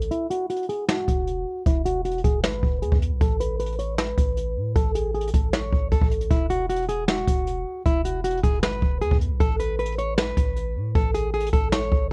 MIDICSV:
0, 0, Header, 1, 4, 480
1, 0, Start_track
1, 0, Key_signature, 4, "major"
1, 0, Tempo, 387097
1, 140, Time_signature, 4, 2, 24, 8
1, 15035, End_track
2, 0, Start_track
2, 0, Title_t, "Nylon-string guitar"
2, 0, Program_c, 0, 24
2, 138, Note_on_c, 0, 64, 79
2, 323, Note_off_c, 0, 64, 0
2, 379, Note_on_c, 0, 66, 91
2, 563, Note_off_c, 0, 66, 0
2, 619, Note_on_c, 0, 66, 77
2, 804, Note_off_c, 0, 66, 0
2, 858, Note_on_c, 0, 68, 73
2, 1043, Note_off_c, 0, 68, 0
2, 1098, Note_on_c, 0, 66, 89
2, 2009, Note_off_c, 0, 66, 0
2, 2059, Note_on_c, 0, 64, 90
2, 2244, Note_off_c, 0, 64, 0
2, 2298, Note_on_c, 0, 66, 80
2, 2483, Note_off_c, 0, 66, 0
2, 2539, Note_on_c, 0, 66, 80
2, 2723, Note_off_c, 0, 66, 0
2, 2779, Note_on_c, 0, 68, 82
2, 2964, Note_off_c, 0, 68, 0
2, 3020, Note_on_c, 0, 71, 88
2, 3471, Note_off_c, 0, 71, 0
2, 3499, Note_on_c, 0, 68, 85
2, 3683, Note_off_c, 0, 68, 0
2, 3979, Note_on_c, 0, 69, 80
2, 4163, Note_off_c, 0, 69, 0
2, 4219, Note_on_c, 0, 71, 83
2, 4403, Note_off_c, 0, 71, 0
2, 4459, Note_on_c, 0, 71, 80
2, 4644, Note_off_c, 0, 71, 0
2, 4698, Note_on_c, 0, 73, 77
2, 4883, Note_off_c, 0, 73, 0
2, 4939, Note_on_c, 0, 71, 86
2, 5850, Note_off_c, 0, 71, 0
2, 5899, Note_on_c, 0, 69, 96
2, 6083, Note_off_c, 0, 69, 0
2, 6139, Note_on_c, 0, 68, 77
2, 6324, Note_off_c, 0, 68, 0
2, 6379, Note_on_c, 0, 68, 85
2, 6564, Note_off_c, 0, 68, 0
2, 6619, Note_on_c, 0, 69, 80
2, 6804, Note_off_c, 0, 69, 0
2, 6858, Note_on_c, 0, 73, 93
2, 7310, Note_off_c, 0, 73, 0
2, 7338, Note_on_c, 0, 69, 82
2, 7523, Note_off_c, 0, 69, 0
2, 7818, Note_on_c, 0, 64, 78
2, 8003, Note_off_c, 0, 64, 0
2, 8059, Note_on_c, 0, 66, 90
2, 8243, Note_off_c, 0, 66, 0
2, 8299, Note_on_c, 0, 66, 77
2, 8484, Note_off_c, 0, 66, 0
2, 8538, Note_on_c, 0, 68, 75
2, 8723, Note_off_c, 0, 68, 0
2, 8777, Note_on_c, 0, 66, 89
2, 9689, Note_off_c, 0, 66, 0
2, 9740, Note_on_c, 0, 64, 87
2, 9924, Note_off_c, 0, 64, 0
2, 9979, Note_on_c, 0, 66, 77
2, 10164, Note_off_c, 0, 66, 0
2, 10219, Note_on_c, 0, 66, 81
2, 10404, Note_off_c, 0, 66, 0
2, 10459, Note_on_c, 0, 68, 83
2, 10643, Note_off_c, 0, 68, 0
2, 10699, Note_on_c, 0, 71, 87
2, 11151, Note_off_c, 0, 71, 0
2, 11179, Note_on_c, 0, 68, 87
2, 11363, Note_off_c, 0, 68, 0
2, 11659, Note_on_c, 0, 69, 81
2, 11843, Note_off_c, 0, 69, 0
2, 11899, Note_on_c, 0, 71, 83
2, 12084, Note_off_c, 0, 71, 0
2, 12140, Note_on_c, 0, 71, 81
2, 12324, Note_off_c, 0, 71, 0
2, 12380, Note_on_c, 0, 73, 74
2, 12564, Note_off_c, 0, 73, 0
2, 12619, Note_on_c, 0, 71, 87
2, 13530, Note_off_c, 0, 71, 0
2, 13580, Note_on_c, 0, 69, 94
2, 13764, Note_off_c, 0, 69, 0
2, 13820, Note_on_c, 0, 68, 79
2, 14004, Note_off_c, 0, 68, 0
2, 14061, Note_on_c, 0, 68, 88
2, 14245, Note_off_c, 0, 68, 0
2, 14299, Note_on_c, 0, 69, 84
2, 14484, Note_off_c, 0, 69, 0
2, 14539, Note_on_c, 0, 73, 91
2, 14991, Note_off_c, 0, 73, 0
2, 15035, End_track
3, 0, Start_track
3, 0, Title_t, "808-style bass"
3, 0, Program_c, 1, 38
3, 0, Note_on_c, 1, 33, 98
3, 125, Note_off_c, 1, 33, 0
3, 1339, Note_on_c, 1, 28, 101
3, 1800, Note_off_c, 1, 28, 0
3, 2060, Note_on_c, 1, 28, 111
3, 2751, Note_off_c, 1, 28, 0
3, 2780, Note_on_c, 1, 28, 105
3, 3020, Note_on_c, 1, 32, 98
3, 3038, Note_off_c, 1, 28, 0
3, 3248, Note_off_c, 1, 32, 0
3, 3259, Note_on_c, 1, 28, 103
3, 3499, Note_on_c, 1, 40, 97
3, 3518, Note_off_c, 1, 28, 0
3, 3613, Note_off_c, 1, 40, 0
3, 3619, Note_on_c, 1, 40, 105
3, 3860, Note_on_c, 1, 35, 97
3, 3879, Note_off_c, 1, 40, 0
3, 3974, Note_off_c, 1, 35, 0
3, 3979, Note_on_c, 1, 33, 113
3, 5132, Note_off_c, 1, 33, 0
3, 5178, Note_on_c, 1, 33, 105
3, 5660, Note_on_c, 1, 45, 99
3, 5678, Note_off_c, 1, 33, 0
3, 5888, Note_off_c, 1, 45, 0
3, 5899, Note_on_c, 1, 33, 113
3, 6591, Note_off_c, 1, 33, 0
3, 6619, Note_on_c, 1, 33, 103
3, 7080, Note_off_c, 1, 33, 0
3, 7099, Note_on_c, 1, 33, 102
3, 7330, Note_off_c, 1, 33, 0
3, 7339, Note_on_c, 1, 33, 102
3, 7455, Note_off_c, 1, 33, 0
3, 7459, Note_on_c, 1, 33, 101
3, 7805, Note_off_c, 1, 33, 0
3, 7819, Note_on_c, 1, 28, 108
3, 8971, Note_off_c, 1, 28, 0
3, 9019, Note_on_c, 1, 28, 100
3, 9480, Note_off_c, 1, 28, 0
3, 9740, Note_on_c, 1, 28, 115
3, 10431, Note_off_c, 1, 28, 0
3, 10460, Note_on_c, 1, 28, 109
3, 10700, Note_on_c, 1, 32, 96
3, 10719, Note_off_c, 1, 28, 0
3, 10928, Note_off_c, 1, 32, 0
3, 10939, Note_on_c, 1, 28, 106
3, 11180, Note_on_c, 1, 40, 97
3, 11199, Note_off_c, 1, 28, 0
3, 11294, Note_off_c, 1, 40, 0
3, 11300, Note_on_c, 1, 40, 101
3, 11540, Note_on_c, 1, 35, 96
3, 11558, Note_off_c, 1, 40, 0
3, 11654, Note_off_c, 1, 35, 0
3, 11660, Note_on_c, 1, 33, 117
3, 12812, Note_off_c, 1, 33, 0
3, 12859, Note_on_c, 1, 33, 106
3, 13339, Note_on_c, 1, 45, 98
3, 13358, Note_off_c, 1, 33, 0
3, 13568, Note_off_c, 1, 45, 0
3, 13580, Note_on_c, 1, 33, 112
3, 14271, Note_off_c, 1, 33, 0
3, 14300, Note_on_c, 1, 33, 104
3, 14760, Note_off_c, 1, 33, 0
3, 14779, Note_on_c, 1, 33, 103
3, 15010, Note_off_c, 1, 33, 0
3, 15035, End_track
4, 0, Start_track
4, 0, Title_t, "Drums"
4, 20, Note_on_c, 9, 42, 62
4, 140, Note_off_c, 9, 42, 0
4, 140, Note_on_c, 9, 42, 75
4, 264, Note_off_c, 9, 42, 0
4, 380, Note_on_c, 9, 42, 88
4, 504, Note_off_c, 9, 42, 0
4, 620, Note_on_c, 9, 42, 70
4, 700, Note_off_c, 9, 42, 0
4, 700, Note_on_c, 9, 42, 55
4, 780, Note_off_c, 9, 42, 0
4, 780, Note_on_c, 9, 42, 42
4, 860, Note_off_c, 9, 42, 0
4, 860, Note_on_c, 9, 42, 73
4, 984, Note_off_c, 9, 42, 0
4, 1099, Note_on_c, 9, 38, 122
4, 1223, Note_off_c, 9, 38, 0
4, 1339, Note_on_c, 9, 36, 88
4, 1340, Note_on_c, 9, 42, 84
4, 1463, Note_off_c, 9, 36, 0
4, 1464, Note_off_c, 9, 42, 0
4, 1579, Note_on_c, 9, 42, 69
4, 1703, Note_off_c, 9, 42, 0
4, 2060, Note_on_c, 9, 36, 107
4, 2060, Note_on_c, 9, 42, 75
4, 2184, Note_off_c, 9, 36, 0
4, 2184, Note_off_c, 9, 42, 0
4, 2301, Note_on_c, 9, 42, 90
4, 2425, Note_off_c, 9, 42, 0
4, 2540, Note_on_c, 9, 42, 69
4, 2620, Note_off_c, 9, 42, 0
4, 2620, Note_on_c, 9, 42, 58
4, 2700, Note_off_c, 9, 42, 0
4, 2700, Note_on_c, 9, 42, 43
4, 2780, Note_off_c, 9, 42, 0
4, 2780, Note_on_c, 9, 36, 87
4, 2780, Note_on_c, 9, 42, 75
4, 2904, Note_off_c, 9, 36, 0
4, 2904, Note_off_c, 9, 42, 0
4, 3020, Note_on_c, 9, 38, 123
4, 3144, Note_off_c, 9, 38, 0
4, 3259, Note_on_c, 9, 36, 89
4, 3383, Note_off_c, 9, 36, 0
4, 3499, Note_on_c, 9, 42, 68
4, 3619, Note_on_c, 9, 36, 97
4, 3623, Note_off_c, 9, 42, 0
4, 3742, Note_on_c, 9, 42, 72
4, 3743, Note_off_c, 9, 36, 0
4, 3866, Note_off_c, 9, 42, 0
4, 3979, Note_on_c, 9, 42, 76
4, 3980, Note_on_c, 9, 36, 108
4, 4103, Note_off_c, 9, 42, 0
4, 4104, Note_off_c, 9, 36, 0
4, 4220, Note_on_c, 9, 42, 90
4, 4344, Note_off_c, 9, 42, 0
4, 4459, Note_on_c, 9, 42, 71
4, 4539, Note_off_c, 9, 42, 0
4, 4539, Note_on_c, 9, 42, 54
4, 4619, Note_off_c, 9, 42, 0
4, 4619, Note_on_c, 9, 42, 42
4, 4699, Note_off_c, 9, 42, 0
4, 4699, Note_on_c, 9, 42, 75
4, 4823, Note_off_c, 9, 42, 0
4, 4938, Note_on_c, 9, 38, 124
4, 5062, Note_off_c, 9, 38, 0
4, 5179, Note_on_c, 9, 36, 88
4, 5179, Note_on_c, 9, 42, 90
4, 5303, Note_off_c, 9, 36, 0
4, 5303, Note_off_c, 9, 42, 0
4, 5418, Note_on_c, 9, 42, 71
4, 5542, Note_off_c, 9, 42, 0
4, 5899, Note_on_c, 9, 42, 74
4, 5900, Note_on_c, 9, 36, 110
4, 6023, Note_off_c, 9, 42, 0
4, 6024, Note_off_c, 9, 36, 0
4, 6140, Note_on_c, 9, 42, 87
4, 6264, Note_off_c, 9, 42, 0
4, 6379, Note_on_c, 9, 42, 42
4, 6459, Note_off_c, 9, 42, 0
4, 6459, Note_on_c, 9, 42, 59
4, 6539, Note_off_c, 9, 42, 0
4, 6539, Note_on_c, 9, 42, 71
4, 6619, Note_off_c, 9, 42, 0
4, 6619, Note_on_c, 9, 36, 84
4, 6619, Note_on_c, 9, 42, 73
4, 6743, Note_off_c, 9, 36, 0
4, 6743, Note_off_c, 9, 42, 0
4, 6859, Note_on_c, 9, 38, 123
4, 6983, Note_off_c, 9, 38, 0
4, 7099, Note_on_c, 9, 36, 89
4, 7223, Note_off_c, 9, 36, 0
4, 7338, Note_on_c, 9, 42, 71
4, 7339, Note_on_c, 9, 36, 89
4, 7459, Note_off_c, 9, 36, 0
4, 7459, Note_on_c, 9, 36, 97
4, 7462, Note_off_c, 9, 42, 0
4, 7579, Note_on_c, 9, 42, 63
4, 7583, Note_off_c, 9, 36, 0
4, 7699, Note_off_c, 9, 42, 0
4, 7699, Note_on_c, 9, 42, 62
4, 7819, Note_off_c, 9, 42, 0
4, 7819, Note_on_c, 9, 36, 106
4, 7819, Note_on_c, 9, 42, 71
4, 7943, Note_off_c, 9, 36, 0
4, 7943, Note_off_c, 9, 42, 0
4, 8059, Note_on_c, 9, 42, 89
4, 8183, Note_off_c, 9, 42, 0
4, 8299, Note_on_c, 9, 42, 71
4, 8379, Note_off_c, 9, 42, 0
4, 8379, Note_on_c, 9, 42, 55
4, 8459, Note_off_c, 9, 42, 0
4, 8459, Note_on_c, 9, 42, 42
4, 8539, Note_off_c, 9, 42, 0
4, 8539, Note_on_c, 9, 42, 76
4, 8663, Note_off_c, 9, 42, 0
4, 8778, Note_on_c, 9, 38, 121
4, 8902, Note_off_c, 9, 38, 0
4, 9019, Note_on_c, 9, 36, 92
4, 9020, Note_on_c, 9, 42, 85
4, 9143, Note_off_c, 9, 36, 0
4, 9144, Note_off_c, 9, 42, 0
4, 9259, Note_on_c, 9, 42, 69
4, 9383, Note_off_c, 9, 42, 0
4, 9740, Note_on_c, 9, 36, 106
4, 9740, Note_on_c, 9, 42, 77
4, 9864, Note_off_c, 9, 36, 0
4, 9864, Note_off_c, 9, 42, 0
4, 9980, Note_on_c, 9, 42, 88
4, 10104, Note_off_c, 9, 42, 0
4, 10220, Note_on_c, 9, 42, 69
4, 10300, Note_off_c, 9, 42, 0
4, 10300, Note_on_c, 9, 42, 57
4, 10380, Note_off_c, 9, 42, 0
4, 10380, Note_on_c, 9, 42, 41
4, 10460, Note_off_c, 9, 42, 0
4, 10460, Note_on_c, 9, 36, 87
4, 10460, Note_on_c, 9, 42, 76
4, 10584, Note_off_c, 9, 36, 0
4, 10584, Note_off_c, 9, 42, 0
4, 10699, Note_on_c, 9, 38, 123
4, 10823, Note_off_c, 9, 38, 0
4, 10939, Note_on_c, 9, 36, 88
4, 11063, Note_off_c, 9, 36, 0
4, 11178, Note_on_c, 9, 42, 70
4, 11300, Note_on_c, 9, 36, 96
4, 11302, Note_off_c, 9, 42, 0
4, 11422, Note_on_c, 9, 42, 73
4, 11424, Note_off_c, 9, 36, 0
4, 11546, Note_off_c, 9, 42, 0
4, 11660, Note_on_c, 9, 36, 104
4, 11660, Note_on_c, 9, 42, 76
4, 11784, Note_off_c, 9, 36, 0
4, 11784, Note_off_c, 9, 42, 0
4, 11900, Note_on_c, 9, 42, 88
4, 12024, Note_off_c, 9, 42, 0
4, 12140, Note_on_c, 9, 42, 71
4, 12220, Note_off_c, 9, 42, 0
4, 12220, Note_on_c, 9, 42, 57
4, 12300, Note_off_c, 9, 42, 0
4, 12300, Note_on_c, 9, 42, 42
4, 12380, Note_off_c, 9, 42, 0
4, 12380, Note_on_c, 9, 42, 75
4, 12504, Note_off_c, 9, 42, 0
4, 12619, Note_on_c, 9, 38, 120
4, 12743, Note_off_c, 9, 38, 0
4, 12859, Note_on_c, 9, 36, 93
4, 12860, Note_on_c, 9, 42, 87
4, 12983, Note_off_c, 9, 36, 0
4, 12984, Note_off_c, 9, 42, 0
4, 13098, Note_on_c, 9, 42, 70
4, 13222, Note_off_c, 9, 42, 0
4, 13579, Note_on_c, 9, 42, 71
4, 13580, Note_on_c, 9, 36, 112
4, 13703, Note_off_c, 9, 42, 0
4, 13704, Note_off_c, 9, 36, 0
4, 13820, Note_on_c, 9, 42, 88
4, 13944, Note_off_c, 9, 42, 0
4, 14060, Note_on_c, 9, 42, 41
4, 14139, Note_off_c, 9, 42, 0
4, 14139, Note_on_c, 9, 42, 57
4, 14219, Note_off_c, 9, 42, 0
4, 14219, Note_on_c, 9, 42, 71
4, 14299, Note_off_c, 9, 42, 0
4, 14299, Note_on_c, 9, 36, 85
4, 14299, Note_on_c, 9, 42, 75
4, 14423, Note_off_c, 9, 36, 0
4, 14423, Note_off_c, 9, 42, 0
4, 14539, Note_on_c, 9, 38, 119
4, 14663, Note_off_c, 9, 38, 0
4, 14779, Note_on_c, 9, 36, 91
4, 14903, Note_off_c, 9, 36, 0
4, 15035, End_track
0, 0, End_of_file